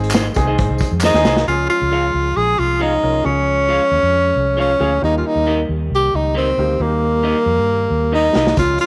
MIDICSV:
0, 0, Header, 1, 7, 480
1, 0, Start_track
1, 0, Tempo, 444115
1, 1586, Time_signature, 4, 2, 24, 8
1, 9576, End_track
2, 0, Start_track
2, 0, Title_t, "Clean electric guitar"
2, 0, Program_c, 0, 27
2, 141, Note_on_c, 0, 63, 88
2, 148, Note_on_c, 0, 68, 90
2, 153, Note_on_c, 0, 72, 89
2, 157, Note_on_c, 0, 75, 103
2, 269, Note_off_c, 0, 63, 0
2, 272, Note_off_c, 0, 68, 0
2, 275, Note_off_c, 0, 72, 0
2, 277, Note_off_c, 0, 75, 0
2, 511, Note_on_c, 0, 75, 63
2, 513, Note_on_c, 0, 72, 55
2, 518, Note_on_c, 0, 68, 50
2, 527, Note_on_c, 0, 63, 45
2, 607, Note_off_c, 0, 75, 0
2, 608, Note_off_c, 0, 72, 0
2, 610, Note_off_c, 0, 68, 0
2, 615, Note_off_c, 0, 63, 0
2, 1111, Note_on_c, 0, 63, 90
2, 1117, Note_on_c, 0, 68, 97
2, 1123, Note_on_c, 0, 72, 106
2, 1127, Note_on_c, 0, 75, 105
2, 1235, Note_off_c, 0, 63, 0
2, 1237, Note_off_c, 0, 68, 0
2, 1241, Note_off_c, 0, 72, 0
2, 1242, Note_off_c, 0, 75, 0
2, 1353, Note_on_c, 0, 63, 68
2, 1357, Note_on_c, 0, 68, 74
2, 1359, Note_on_c, 0, 72, 71
2, 1366, Note_on_c, 0, 75, 73
2, 1448, Note_off_c, 0, 63, 0
2, 1450, Note_off_c, 0, 68, 0
2, 1451, Note_off_c, 0, 72, 0
2, 1455, Note_off_c, 0, 75, 0
2, 2067, Note_on_c, 0, 65, 76
2, 2074, Note_on_c, 0, 68, 73
2, 2080, Note_on_c, 0, 73, 79
2, 2082, Note_on_c, 0, 77, 76
2, 2193, Note_off_c, 0, 65, 0
2, 2197, Note_off_c, 0, 68, 0
2, 2200, Note_off_c, 0, 73, 0
2, 2201, Note_off_c, 0, 77, 0
2, 3023, Note_on_c, 0, 65, 78
2, 3029, Note_on_c, 0, 68, 85
2, 3035, Note_on_c, 0, 73, 78
2, 3038, Note_on_c, 0, 77, 80
2, 3152, Note_off_c, 0, 65, 0
2, 3156, Note_off_c, 0, 68, 0
2, 3158, Note_off_c, 0, 73, 0
2, 3160, Note_off_c, 0, 77, 0
2, 3986, Note_on_c, 0, 65, 73
2, 3987, Note_on_c, 0, 68, 84
2, 3994, Note_on_c, 0, 73, 81
2, 3998, Note_on_c, 0, 77, 82
2, 4115, Note_off_c, 0, 65, 0
2, 4115, Note_off_c, 0, 68, 0
2, 4119, Note_off_c, 0, 73, 0
2, 4121, Note_off_c, 0, 77, 0
2, 4940, Note_on_c, 0, 65, 81
2, 4946, Note_on_c, 0, 68, 84
2, 4949, Note_on_c, 0, 73, 94
2, 4957, Note_on_c, 0, 77, 89
2, 5073, Note_off_c, 0, 65, 0
2, 5076, Note_off_c, 0, 68, 0
2, 5077, Note_off_c, 0, 73, 0
2, 5081, Note_off_c, 0, 77, 0
2, 5185, Note_on_c, 0, 65, 65
2, 5192, Note_on_c, 0, 68, 59
2, 5198, Note_on_c, 0, 73, 72
2, 5200, Note_on_c, 0, 77, 69
2, 5288, Note_off_c, 0, 65, 0
2, 5291, Note_off_c, 0, 68, 0
2, 5294, Note_off_c, 0, 73, 0
2, 5295, Note_off_c, 0, 77, 0
2, 5906, Note_on_c, 0, 63, 82
2, 5912, Note_on_c, 0, 67, 81
2, 5914, Note_on_c, 0, 70, 97
2, 5917, Note_on_c, 0, 75, 96
2, 6036, Note_off_c, 0, 63, 0
2, 6039, Note_off_c, 0, 67, 0
2, 6040, Note_off_c, 0, 70, 0
2, 6041, Note_off_c, 0, 75, 0
2, 6860, Note_on_c, 0, 63, 83
2, 6863, Note_on_c, 0, 67, 87
2, 6872, Note_on_c, 0, 70, 95
2, 6877, Note_on_c, 0, 75, 101
2, 6993, Note_off_c, 0, 63, 0
2, 6994, Note_off_c, 0, 67, 0
2, 6999, Note_off_c, 0, 70, 0
2, 7002, Note_off_c, 0, 75, 0
2, 7816, Note_on_c, 0, 63, 68
2, 7819, Note_on_c, 0, 67, 83
2, 7823, Note_on_c, 0, 70, 83
2, 7830, Note_on_c, 0, 75, 92
2, 7950, Note_off_c, 0, 63, 0
2, 7951, Note_off_c, 0, 67, 0
2, 7954, Note_off_c, 0, 70, 0
2, 7957, Note_off_c, 0, 75, 0
2, 8779, Note_on_c, 0, 63, 97
2, 8785, Note_on_c, 0, 67, 83
2, 8788, Note_on_c, 0, 70, 93
2, 8790, Note_on_c, 0, 75, 99
2, 8910, Note_off_c, 0, 63, 0
2, 8913, Note_off_c, 0, 67, 0
2, 8915, Note_off_c, 0, 70, 0
2, 8916, Note_off_c, 0, 75, 0
2, 9024, Note_on_c, 0, 63, 62
2, 9027, Note_on_c, 0, 67, 65
2, 9033, Note_on_c, 0, 70, 66
2, 9037, Note_on_c, 0, 75, 73
2, 9125, Note_off_c, 0, 63, 0
2, 9127, Note_off_c, 0, 67, 0
2, 9130, Note_off_c, 0, 70, 0
2, 9132, Note_off_c, 0, 75, 0
2, 9576, End_track
3, 0, Start_track
3, 0, Title_t, "Tenor saxophone"
3, 0, Program_c, 1, 66
3, 1135, Note_on_c, 1, 63, 104
3, 1568, Note_off_c, 1, 63, 0
3, 1597, Note_on_c, 1, 65, 96
3, 1815, Note_off_c, 1, 65, 0
3, 1837, Note_on_c, 1, 65, 98
3, 2557, Note_on_c, 1, 68, 99
3, 2573, Note_off_c, 1, 65, 0
3, 2800, Note_on_c, 1, 65, 98
3, 2816, Note_off_c, 1, 68, 0
3, 3046, Note_on_c, 1, 63, 101
3, 3062, Note_off_c, 1, 65, 0
3, 3518, Note_on_c, 1, 61, 101
3, 3534, Note_off_c, 1, 63, 0
3, 4956, Note_off_c, 1, 61, 0
3, 4974, Note_on_c, 1, 61, 85
3, 5410, Note_off_c, 1, 61, 0
3, 5450, Note_on_c, 1, 63, 85
3, 5590, Note_off_c, 1, 63, 0
3, 5597, Note_on_c, 1, 65, 57
3, 5693, Note_on_c, 1, 63, 81
3, 5709, Note_off_c, 1, 65, 0
3, 6109, Note_off_c, 1, 63, 0
3, 6432, Note_on_c, 1, 67, 90
3, 6653, Note_on_c, 1, 63, 80
3, 6669, Note_off_c, 1, 67, 0
3, 6883, Note_off_c, 1, 63, 0
3, 6891, Note_on_c, 1, 60, 86
3, 7370, Note_on_c, 1, 58, 91
3, 7387, Note_off_c, 1, 60, 0
3, 8796, Note_off_c, 1, 58, 0
3, 8803, Note_on_c, 1, 63, 99
3, 9241, Note_off_c, 1, 63, 0
3, 9281, Note_on_c, 1, 65, 99
3, 9497, Note_off_c, 1, 65, 0
3, 9519, Note_on_c, 1, 65, 97
3, 9576, Note_off_c, 1, 65, 0
3, 9576, End_track
4, 0, Start_track
4, 0, Title_t, "Upright piano"
4, 0, Program_c, 2, 0
4, 0, Note_on_c, 2, 60, 81
4, 0, Note_on_c, 2, 63, 72
4, 0, Note_on_c, 2, 68, 100
4, 150, Note_off_c, 2, 63, 0
4, 154, Note_off_c, 2, 68, 0
4, 178, Note_off_c, 2, 60, 0
4, 392, Note_on_c, 2, 59, 67
4, 394, Note_on_c, 2, 63, 85
4, 394, Note_on_c, 2, 68, 98
4, 445, Note_off_c, 2, 59, 0
4, 446, Note_on_c, 2, 60, 86
4, 950, Note_off_c, 2, 63, 0
4, 950, Note_off_c, 2, 68, 0
4, 976, Note_off_c, 2, 60, 0
4, 1241, Note_on_c, 2, 60, 83
4, 1241, Note_on_c, 2, 63, 79
4, 1247, Note_on_c, 2, 68, 96
4, 1473, Note_off_c, 2, 63, 0
4, 1474, Note_off_c, 2, 60, 0
4, 1476, Note_off_c, 2, 68, 0
4, 1602, Note_on_c, 2, 61, 60
4, 1606, Note_on_c, 2, 65, 58
4, 1607, Note_on_c, 2, 68, 73
4, 2235, Note_off_c, 2, 61, 0
4, 2237, Note_off_c, 2, 65, 0
4, 2238, Note_off_c, 2, 68, 0
4, 3271, Note_on_c, 2, 65, 61
4, 3272, Note_on_c, 2, 61, 63
4, 3278, Note_on_c, 2, 70, 73
4, 3430, Note_off_c, 2, 65, 0
4, 3431, Note_off_c, 2, 61, 0
4, 3434, Note_off_c, 2, 70, 0
4, 3499, Note_on_c, 2, 61, 69
4, 3503, Note_on_c, 2, 65, 62
4, 3503, Note_on_c, 2, 68, 70
4, 4146, Note_off_c, 2, 61, 0
4, 4148, Note_off_c, 2, 65, 0
4, 4148, Note_off_c, 2, 68, 0
4, 5184, Note_on_c, 2, 61, 67
4, 5184, Note_on_c, 2, 65, 60
4, 5191, Note_on_c, 2, 68, 76
4, 5348, Note_off_c, 2, 61, 0
4, 5348, Note_off_c, 2, 65, 0
4, 5352, Note_off_c, 2, 68, 0
4, 5428, Note_on_c, 2, 58, 69
4, 5429, Note_on_c, 2, 63, 60
4, 5429, Note_on_c, 2, 67, 74
4, 6071, Note_off_c, 2, 58, 0
4, 6071, Note_off_c, 2, 63, 0
4, 6071, Note_off_c, 2, 67, 0
4, 7116, Note_on_c, 2, 63, 64
4, 7119, Note_on_c, 2, 58, 67
4, 7122, Note_on_c, 2, 67, 81
4, 7274, Note_off_c, 2, 63, 0
4, 7276, Note_off_c, 2, 58, 0
4, 7278, Note_off_c, 2, 67, 0
4, 7352, Note_on_c, 2, 58, 65
4, 7357, Note_on_c, 2, 63, 58
4, 7358, Note_on_c, 2, 67, 72
4, 7992, Note_off_c, 2, 58, 0
4, 7994, Note_off_c, 2, 63, 0
4, 7994, Note_off_c, 2, 67, 0
4, 9027, Note_on_c, 2, 58, 68
4, 9027, Note_on_c, 2, 63, 62
4, 9028, Note_on_c, 2, 67, 73
4, 9187, Note_off_c, 2, 58, 0
4, 9188, Note_off_c, 2, 63, 0
4, 9188, Note_off_c, 2, 67, 0
4, 9263, Note_on_c, 2, 56, 68
4, 9264, Note_on_c, 2, 61, 59
4, 9267, Note_on_c, 2, 65, 71
4, 9576, Note_off_c, 2, 56, 0
4, 9576, Note_off_c, 2, 61, 0
4, 9576, Note_off_c, 2, 65, 0
4, 9576, End_track
5, 0, Start_track
5, 0, Title_t, "Tonewheel organ"
5, 0, Program_c, 3, 16
5, 0, Note_on_c, 3, 51, 73
5, 0, Note_on_c, 3, 56, 66
5, 0, Note_on_c, 3, 60, 64
5, 0, Note_on_c, 3, 68, 77
5, 1538, Note_off_c, 3, 51, 0
5, 1566, Note_off_c, 3, 68, 0
5, 1569, Note_off_c, 3, 56, 0
5, 1570, Note_off_c, 3, 60, 0
5, 1579, Note_on_c, 3, 68, 69
5, 1582, Note_on_c, 3, 56, 56
5, 1582, Note_on_c, 3, 61, 58
5, 1583, Note_on_c, 3, 53, 63
5, 5391, Note_off_c, 3, 68, 0
5, 5392, Note_off_c, 3, 56, 0
5, 5392, Note_off_c, 3, 61, 0
5, 5393, Note_off_c, 3, 53, 0
5, 5412, Note_on_c, 3, 51, 64
5, 5418, Note_on_c, 3, 55, 61
5, 5419, Note_on_c, 3, 58, 61
5, 5420, Note_on_c, 3, 67, 73
5, 9219, Note_off_c, 3, 51, 0
5, 9222, Note_off_c, 3, 55, 0
5, 9223, Note_off_c, 3, 58, 0
5, 9223, Note_off_c, 3, 67, 0
5, 9253, Note_on_c, 3, 61, 56
5, 9259, Note_on_c, 3, 56, 59
5, 9263, Note_on_c, 3, 53, 65
5, 9263, Note_on_c, 3, 65, 66
5, 9576, Note_off_c, 3, 53, 0
5, 9576, Note_off_c, 3, 56, 0
5, 9576, Note_off_c, 3, 61, 0
5, 9576, Note_off_c, 3, 65, 0
5, 9576, End_track
6, 0, Start_track
6, 0, Title_t, "Fingered electric bass"
6, 0, Program_c, 4, 33
6, 0, Note_on_c, 4, 32, 98
6, 305, Note_off_c, 4, 32, 0
6, 396, Note_on_c, 4, 36, 94
6, 594, Note_off_c, 4, 36, 0
6, 634, Note_on_c, 4, 32, 90
6, 731, Note_off_c, 4, 32, 0
6, 745, Note_on_c, 4, 36, 92
6, 846, Note_off_c, 4, 36, 0
6, 989, Note_on_c, 4, 41, 82
6, 1190, Note_off_c, 4, 41, 0
6, 1234, Note_on_c, 4, 39, 83
6, 1332, Note_off_c, 4, 39, 0
6, 1346, Note_on_c, 4, 36, 94
6, 1549, Note_off_c, 4, 36, 0
6, 1598, Note_on_c, 4, 37, 95
6, 1796, Note_off_c, 4, 37, 0
6, 1962, Note_on_c, 4, 37, 82
6, 2260, Note_off_c, 4, 37, 0
6, 2315, Note_on_c, 4, 37, 82
6, 2515, Note_off_c, 4, 37, 0
6, 2557, Note_on_c, 4, 34, 92
6, 2757, Note_off_c, 4, 34, 0
6, 2799, Note_on_c, 4, 36, 82
6, 3201, Note_off_c, 4, 36, 0
6, 3276, Note_on_c, 4, 36, 71
6, 3477, Note_off_c, 4, 36, 0
6, 3519, Note_on_c, 4, 37, 100
6, 4085, Note_off_c, 4, 37, 0
6, 4231, Note_on_c, 4, 39, 77
6, 4333, Note_off_c, 4, 39, 0
6, 4352, Note_on_c, 4, 41, 81
6, 4657, Note_off_c, 4, 41, 0
6, 4713, Note_on_c, 4, 36, 81
6, 5119, Note_off_c, 4, 36, 0
6, 5192, Note_on_c, 4, 38, 85
6, 5395, Note_off_c, 4, 38, 0
6, 5433, Note_on_c, 4, 39, 100
6, 5636, Note_off_c, 4, 39, 0
6, 5788, Note_on_c, 4, 39, 81
6, 6095, Note_off_c, 4, 39, 0
6, 6151, Note_on_c, 4, 39, 79
6, 6355, Note_off_c, 4, 39, 0
6, 6383, Note_on_c, 4, 36, 84
6, 6590, Note_off_c, 4, 36, 0
6, 6632, Note_on_c, 4, 37, 77
6, 7039, Note_off_c, 4, 37, 0
6, 7110, Note_on_c, 4, 38, 79
6, 7314, Note_off_c, 4, 38, 0
6, 7349, Note_on_c, 4, 39, 108
6, 7920, Note_off_c, 4, 39, 0
6, 8063, Note_on_c, 4, 41, 78
6, 8168, Note_off_c, 4, 41, 0
6, 8189, Note_on_c, 4, 43, 78
6, 8494, Note_off_c, 4, 43, 0
6, 8542, Note_on_c, 4, 39, 78
6, 8951, Note_off_c, 4, 39, 0
6, 9027, Note_on_c, 4, 36, 82
6, 9230, Note_off_c, 4, 36, 0
6, 9264, Note_on_c, 4, 37, 108
6, 9468, Note_off_c, 4, 37, 0
6, 9576, End_track
7, 0, Start_track
7, 0, Title_t, "Drums"
7, 41, Note_on_c, 9, 42, 56
7, 114, Note_on_c, 9, 39, 99
7, 114, Note_on_c, 9, 54, 94
7, 149, Note_off_c, 9, 42, 0
7, 154, Note_on_c, 9, 42, 88
7, 157, Note_on_c, 9, 38, 104
7, 222, Note_off_c, 9, 39, 0
7, 222, Note_off_c, 9, 54, 0
7, 262, Note_off_c, 9, 42, 0
7, 265, Note_off_c, 9, 38, 0
7, 372, Note_on_c, 9, 54, 59
7, 393, Note_on_c, 9, 36, 84
7, 393, Note_on_c, 9, 42, 76
7, 480, Note_off_c, 9, 54, 0
7, 501, Note_off_c, 9, 36, 0
7, 501, Note_off_c, 9, 42, 0
7, 631, Note_on_c, 9, 42, 83
7, 635, Note_on_c, 9, 36, 81
7, 739, Note_off_c, 9, 42, 0
7, 743, Note_off_c, 9, 36, 0
7, 846, Note_on_c, 9, 54, 45
7, 872, Note_on_c, 9, 36, 85
7, 885, Note_on_c, 9, 42, 73
7, 954, Note_off_c, 9, 54, 0
7, 980, Note_off_c, 9, 36, 0
7, 993, Note_off_c, 9, 42, 0
7, 1087, Note_on_c, 9, 39, 94
7, 1087, Note_on_c, 9, 54, 93
7, 1116, Note_on_c, 9, 38, 59
7, 1195, Note_off_c, 9, 39, 0
7, 1195, Note_off_c, 9, 54, 0
7, 1224, Note_off_c, 9, 38, 0
7, 1237, Note_on_c, 9, 38, 58
7, 1345, Note_off_c, 9, 38, 0
7, 1349, Note_on_c, 9, 38, 96
7, 1352, Note_on_c, 9, 54, 49
7, 1458, Note_off_c, 9, 38, 0
7, 1460, Note_off_c, 9, 54, 0
7, 1475, Note_on_c, 9, 38, 95
7, 1583, Note_off_c, 9, 38, 0
7, 9028, Note_on_c, 9, 38, 94
7, 9137, Note_off_c, 9, 38, 0
7, 9151, Note_on_c, 9, 38, 93
7, 9259, Note_off_c, 9, 38, 0
7, 9261, Note_on_c, 9, 42, 91
7, 9264, Note_on_c, 9, 54, 47
7, 9265, Note_on_c, 9, 36, 104
7, 9369, Note_off_c, 9, 42, 0
7, 9372, Note_off_c, 9, 54, 0
7, 9373, Note_off_c, 9, 36, 0
7, 9493, Note_on_c, 9, 42, 65
7, 9576, Note_off_c, 9, 42, 0
7, 9576, End_track
0, 0, End_of_file